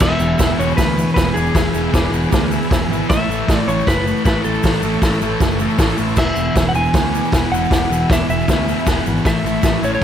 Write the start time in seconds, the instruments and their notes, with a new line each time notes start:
0.00 picked electric bass E1, distorted electric guitar E2 B2 E3, transistor combo organ G#4 B4 E5, electric slide guitar E5, kick, snare, crash
0.19 picked electric bass E1, distorted electric guitar E2 B2 E3, transistor combo organ G#4 B4 E5, shaker
0.39 picked electric bass E1, distorted electric guitar E2 B2 E3, transistor combo organ G#4 B4 E5, kick, snare, open hi-hat, shaker
0.58 picked electric bass E1, distorted electric guitar E2 B2 E3, transistor combo organ G#4 B4 F#5, electric slide guitar C#5, shaker
0.77 picked electric bass D2, distorted electric guitar E2 B2 E3, transistor combo organ G#4 B4 C#5, electric slide guitar B4, kick, snare, open hi-hat, shaker
0.97 distorted electric guitar E2 B2 E3, transistor combo organ G#4 B4 C#5, shaker
1.14 picked electric bass E1, distorted electric guitar E2 B2 E3, transistor combo organ G#4 B4 E5, electric slide guitar B4, kick, snare, open hi-hat, shaker
1.34 picked electric bass E1, distorted electric guitar E2 B2 E3, electric slide guitar G#4, transistor combo organ G#4 B4 D5, shaker
1.46 shaker
1.54 picked electric bass E1, distorted electric guitar E2 B2 E3, transistor combo organ G#4 B4 E5, kick, snare, open hi-hat, shaker
1.73 picked electric bass E1, distorted electric guitar E2 B2 E3, transistor combo organ G#4 B4 E5, shaker
1.92 picked electric bass E1, distorted electric guitar E2 B2 E3, transistor combo organ G#4 B4 D5, kick, snare, open hi-hat, shaker
2.11 picked electric bass E1, distorted electric guitar E2 B2 E3, transistor combo organ G#4 B4 F#5, shaker
2.22 shaker
2.31 picked electric bass D2, distorted electric guitar E2 B2 E3, transistor combo organ G#4 B4 D5, kick, snare, open hi-hat, shaker
2.50 distorted electric guitar E2 B2 E3, transistor combo organ G#4 B4 E5, shaker
2.62 shaker
2.70 picked electric bass E1, distorted electric guitar E2 B2 E3, transistor combo organ G#4 B4 E5, kick, snare, open hi-hat, shaker
2.89 picked electric bass G#1, distorted electric guitar E2 B2 E3, transistor combo organ G#4 B4 E5
2.93 shaker
3.03 shaker
3.09 picked electric bass A1, distorted electric guitar A2 E3 A3, transistor combo organ A4 C#5 E5, electric slide guitar E5, kick, snare, open hi-hat, shaker
3.28 picked electric bass A1, distorted electric guitar A2 E3 A3, transistor combo organ A4 C#5 E5, shaker
3.48 picked electric bass A1, distorted electric guitar A2 E3 A3, transistor combo organ A4 C#5 E5, kick, snare, open hi-hat, shaker
3.56 electric slide guitar D5
3.66 picked electric bass A1, distorted electric guitar A2 E3 A3, transistor combo organ A4 C#5 E5, electric slide guitar C#5, shaker
3.80 shaker
3.86 picked electric bass F#1, distorted electric guitar A2 E3 A3, transistor combo organ A4 C#5 F#5, electric slide guitar B4, kick, snare, open hi-hat, shaker
4.05 distorted electric guitar A2 E3 A3, transistor combo organ A4 C#5 F#5, shaker
4.16 shaker
4.25 picked electric bass A1, distorted electric guitar A2 E3 A3, transistor combo organ A4 C#5 E5, electric slide guitar B4, kick, snare, open hi-hat, shaker
4.44 picked electric bass A1, distorted electric guitar A2 E3 A3, electric slide guitar A4, transistor combo organ A4 C#5 E5, shaker
4.54 shaker
4.63 picked electric bass A1, distorted electric guitar A2 E3 A3, transistor combo organ A4 C#5 F#5, kick, snare, open hi-hat, shaker
4.82 picked electric bass A1, distorted electric guitar A2 E3 A3, transistor combo organ A4 C#5 E5, shaker
4.93 shaker
5.02 picked electric bass A1, distorted electric guitar A2 E3 A3, transistor combo organ A4 C#5 E5, kick, snare, open hi-hat, shaker
5.13 shaker
5.21 picked electric bass A1, distorted electric guitar A2 E3 A3, transistor combo organ A4 C#5 E5, shaker
5.40 picked electric bass F#1, distorted electric guitar A2 E3 A3, transistor combo organ A4 C#5 E5, kick, snare, open hi-hat, shaker
5.59 distorted electric guitar A2 E3 A3, transistor combo organ A4 C#5 E5, shaker
5.70 shaker
5.78 picked electric bass A1, distorted electric guitar A2 E3 A3, transistor combo organ A4 C#5 E5, kick, snare, open hi-hat, shaker
5.89 shaker
5.98 picked electric bass A1, distorted electric guitar A2 E3 A3, transistor combo organ A4 C#5 E5, shaker
6.08 shaker
6.16 picked electric bass E1, distorted electric guitar E2 B2 E3, transistor combo organ G#4 B4 E5, electric slide guitar E5, kick, snare, crash, shaker
6.35 picked electric bass E1, distorted electric guitar E2 B2 E3, transistor combo organ G#4 B4 E5, shaker
6.54 picked electric bass E1, distorted electric guitar E2 B2 E3, transistor combo organ G#4 B4 E5, kick, snare, open hi-hat, shaker
6.69 electric slide guitar F#5
6.74 picked electric bass E1, distorted electric guitar E2 B2 E3, transistor combo organ G#4 B4 E5, electric slide guitar G#5, shaker
6.85 shaker
6.93 picked electric bass D2, distorted electric guitar E2 B2 E3, transistor combo organ G#4 B4 C#5, kick, snare, open hi-hat, shaker
7.11 distorted electric guitar E2 B2, transistor combo organ G#4 B4 D5, shaker
7.16 distorted electric guitar E3
7.25 shaker
7.32 picked electric bass E1, distorted electric guitar E2 B2 E3, transistor combo organ G#4 B4 F#5, kick, snare, open hi-hat, shaker
7.50 picked electric bass E1, distorted electric guitar E2 B2, transistor combo organ G#4 B4 E5, electric slide guitar F#5
7.54 distorted electric guitar E3, shaker
7.64 shaker
7.70 picked electric bass E1, distorted electric guitar E2 B2 E3, transistor combo organ G#4 B4 D5, kick, snare, open hi-hat, shaker
7.90 picked electric bass E1, distorted electric guitar E2 B2 E3, transistor combo organ G#4 B4 E5, shaker
8.09 picked electric bass E1, distorted electric guitar E2 B2 E3, transistor combo organ G#4 B4 D5, kick, snare, open hi-hat, shaker
8.13 electric slide guitar E5
8.29 picked electric bass E1, distorted electric guitar E2 B2 E3, transistor combo organ G#4 B4 E5, electric slide guitar E5, shaker
8.40 shaker
8.48 picked electric bass D2, distorted electric guitar E2 B2 E3, transistor combo organ G#4 B4 C#5, kick, snare, open hi-hat, shaker
8.68 distorted electric guitar E2 B2 E3, transistor combo organ G#4 B4 E5, shaker
8.79 shaker
8.87 picked electric bass E1, distorted electric guitar E2 B2 E3, transistor combo organ G#4 B4 F#5, kick, snare, open hi-hat, shaker
9.04 picked electric bass G#1, distorted electric guitar E2 B2 E3, transistor combo organ G#4 B4 F#5, shaker
9.17 shaker
9.23 picked electric bass A1, distorted electric guitar A2 E3, transistor combo organ A4 C#5 E5, kick, snare, open hi-hat, shaker
9.27 distorted electric guitar A3, electric slide guitar E5
9.43 picked electric bass A1, distorted electric guitar A2 E3 A3, transistor combo organ A4 C#5 E5, shaker
9.63 picked electric bass A1, distorted electric guitar A2 E3 A3, transistor combo organ A4 C#5 E5, kick, snare, open hi-hat, shaker
9.82 picked electric bass A1, distorted electric guitar A2 E3 A3, transistor combo organ A4 C#5 E5, electric slide guitar C#5, shaker
9.95 electric slide guitar C#5